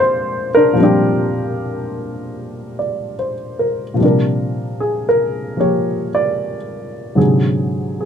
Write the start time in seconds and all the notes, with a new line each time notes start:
Already playing: A#2 F3 G3 A#3 C4 D4 G4 D5 F5
0.00 C5
0.55 D4 A#4
0.73 A#2 F3 G3
0.80 C4 D4 G4
2.79 D5
3.19 C5
3.59 A#4
3.94 A#2 F3
3.99 C3 G3
4.03 D4 A#4
4.80 G#4
5.09 A#4
5.57 F3 A#3 G4 C#5
6.15 D5
7.15 G#2 C3 D3 F#3 G#4
8.01 G#4